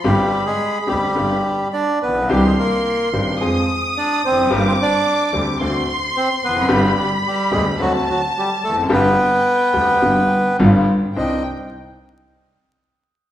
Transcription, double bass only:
\new Staff \with { instrumentName = "Double bass" } { \clef bass \time 4/4 \key c \minor \tempo 4 = 108 g,,8 r4 d,8 g,,8 r4 bes,,8 | c,8 r4 g,,8 f,8 r4 f,,8 | g,,8 r4 d,8 d,8 r4 f,,8 | g,,8 r4 d,8 d,8 r4 f,,8 |
g,,8 r4 d,8 g,,8 r8 g,,8 r8 | c,8 r2. r8 | }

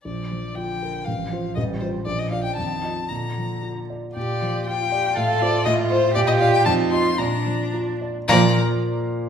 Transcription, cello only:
\new Staff \with { instrumentName = "Cello" } { \time 2/4 \key bes \major \tempo 4 = 117 f4 d4 | f4 g4 | f4 ees4 | d4. r8 |
g'4 f'8 g'8 | a'4 f'4 | g'4 f'4 | d'4. r8 |
f8 r4. | }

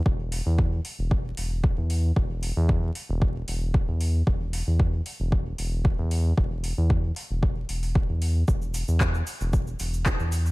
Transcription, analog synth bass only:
\new Staff \with { instrumentName = "Analog synth bass" } { \clef bass \time 4/4 \key c \lydian \tempo 4 = 114 e,,8. e,8. r16 e,,8. e,,8. e,8. | e,,8. e,8. r16 e,,8. e,,8. e,8. | e,,8. e,8. r16 e,,8. e,,8. e,8. | e,,8. e,8. r16 e,,8. e,,8. e,8. |
e,,8. e,8. r16 e,,8. e,,8. e,8. | }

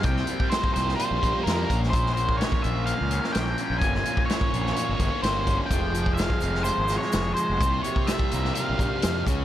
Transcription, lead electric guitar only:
\new Staff \with { instrumentName = "Lead electric guitar" } { \time 4/4 \tempo 4 = 127 g''4 c''8 c''8 c''4 bes'8. r16 | c''8 c''8 des''8 e''8 f''4 g''4 | aes''4 des''4 des''4 c''8. r16 | g''4 f''4 c''8. des''8. c''8~ |
c''8 des''8 e''4 f''4. r8 | }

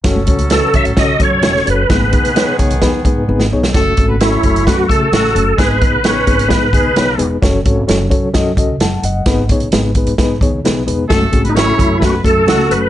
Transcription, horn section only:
\new Staff \with { instrumentName = "Horn section" } { \time 4/4 \key fis \dorian \tempo 4 = 130 <fis cis' a'>2.~ <fis cis' a'>8 r8 | <dis b gis'>2.~ <dis b gis'>8 r8 | <a a'>8. <b b'>16 <cis' cis''>4 <b b'>8 <a a'>8 <fis fis'>8. r16 | <gis gis'>8. <b b'>16 <cis' cis''>4 <b b'>8 <gis gis'>8 <b b'>8. r16 |
r1 | r1 | <a a'>8. <b b'>16 <cis' cis''>4 <b b'>8 <a a'>8 <fis fis'>8. r16 | }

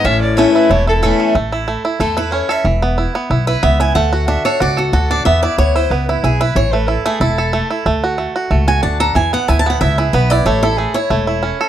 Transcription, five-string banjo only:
\new Staff \with { instrumentName = "Five-string banjo" } { \time 4/4 \key a \major \tempo 4 = 184 cis'4 a8 e'8 a8 e'8 a'8 a8 | a8 e'8 a8 e'8 a8 e'8 cis'8 a'8 | e8 b8 e'8 b8 e'8 e'8 b8 e'8 | a8 fis'8 d'8 a'8 fis'8 a'8 fis'8 d'8 |
b8 e'8 b8 e'8 b8 e'8 e'8 e'8 | e8 a8 e'8 a8 e'8 a'8 a8 e'8 | a8 fis'8 a8 fis'8 a8 fis'8 d'8 a'8 | e8 b8 e'8 b8 e'8 e'8 b8 e'8 |
a8 e'8 a8 e'8 a8 e'8 cis'8 a'8 | }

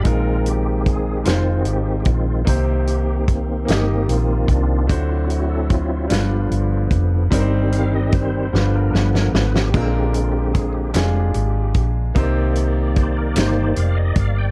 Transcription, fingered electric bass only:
\new Staff \with { instrumentName = "Fingered electric bass" } { \clef bass \time 6/8 \key c \minor \tempo 4. = 50 bes,,4. f,,8 aes,,8 bes,,8 | c,4. g,,8 bes,,8 c,8 | d,4. g,,8 g,,8 f,,8 | g,,4. g,,8 g,,8 aes,,8 |
bes,,4. f,,8 aes,,8 bes,,8 | c,4. g,,8 f,,8 g,,8 | }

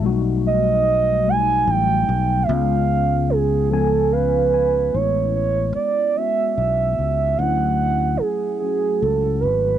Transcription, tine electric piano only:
<<
  \new Staff \with { instrumentName = "Tine electric piano" } { \time 6/8 \key cis \phrygian \tempo 4. = 49 r2. | r2 eis''8 gis''8 | r2. | r2. | }
  \new Staff \with { instrumentName = "Tine electric piano" } { \time 6/8 \key cis \phrygian <g a dis' fis'>4 r8 <fis g a dis'>4 r8 | <gis b cis' eis'>4 r8 <eis b cis' gis''>4 r8 | <gis b cis' dis' e'>4 r8 <gis b cis' fis'>4 r8 | <fis a cis' e'>4 r8 <fis a cis' fis'>4 r8 | }
>>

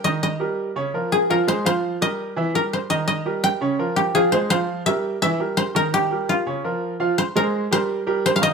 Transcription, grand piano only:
\new Staff \with { instrumentName = "Grand piano" } { \time 4/4 \key ees \mixolydian \tempo 4 = 168 <ees ees' ees''>4 <g g' bes'>4 <des des' des''>8 <f f' bes'>4 <f f' f''>8 | <aes aes' c''>8 <f f' f''>4 <g g' bes'>4 <e e' e''>8 <g g' bes'>4 | <ees ees' ees''>4 <g g' bes'>4 <des des' des''>8 <f f' bes'>4 <f f' f''>8 | <aes aes' c''>8 <f f' f''>4 <g g' bes'>4 <e e' e''>8 <g g' bes'>4 |
<ees ees' ees''>4 <g g' bes'>4 <des des' des''>8 <f f' bes'>4 <f f' f''>8 | r8 <aes aes' c''>4 <g g' bes'>4 <g g' bes'>4 <ees ees' ees''>8 | }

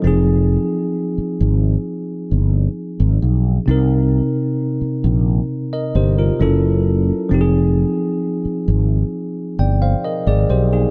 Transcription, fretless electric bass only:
\new Staff \with { instrumentName = "Fretless electric bass" } { \clef bass \time 4/4 \key f \dorian \tempo 4 = 66 f,,8. r8. aes,,8 r8 g,,8 r16 aes,,16 b,,8 | c,8. r8. bes,,8 r8 g,,8 fis,,4 | f,,8. r8. aes,,8 r8 g,,8 r16 aes,,16 b,,8 | }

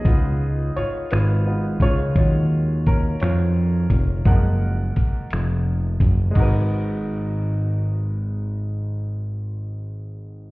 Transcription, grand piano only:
<<
  \new Staff \with { instrumentName = "Grand piano" } { \time 6/8 \key gis \dorian \tempo 4. = 57 <gis' dis''>4 <eis' cis''>8 <eis' b'>4 <eis' cis''>8~ | <eis' cis''>4 <cis' ais'>8 <eis' cis''>4. | <ais' fis''>2 r4 | <gis dis' fis' ais' b'>2.~ |
<gis dis' fis' ais' b'>2. | }
  \new Staff \with { instrumentName = "Grand piano" } { \time 6/8 \key gis \dorian <b dis' eis'>2 <b dis' eis'>8 r8 | <fis gis cis' eis'>4. r4. | <eis gis ais>8 r2 r8 | r2. |
r2. | }
>>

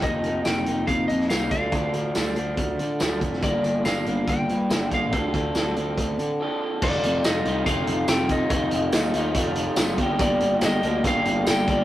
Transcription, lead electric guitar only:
\new Staff \with { instrumentName = "Lead electric guitar" } { \time 4/4 \key f \mixolydian \tempo 4 = 142 ees''4 g''4 f''8 ees''8 f''8 f''8~ | f''2.~ f''8 r8 | d''4 f''4 g''4. f''8~ | f''2. r4 |
d''4 ees''4 f''4 g''8 ees''8~ | ees''2~ ees''8 r4. | d''4 ees''4 f''4 g''8 d''8 | }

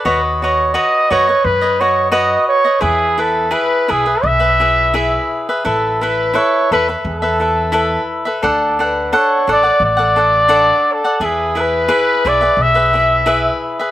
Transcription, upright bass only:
\new Staff \with { instrumentName = "Upright bass" } { \clef bass \time 4/4 \key e \mixolydian \tempo 4 = 86 dis,4. fis,8 fis,2 | e,4. b,,8 b,,2 | a,,4. e,8 e,2 | d,4. a,,8 a,,2 |
e,4. b,,8 b,,2 | }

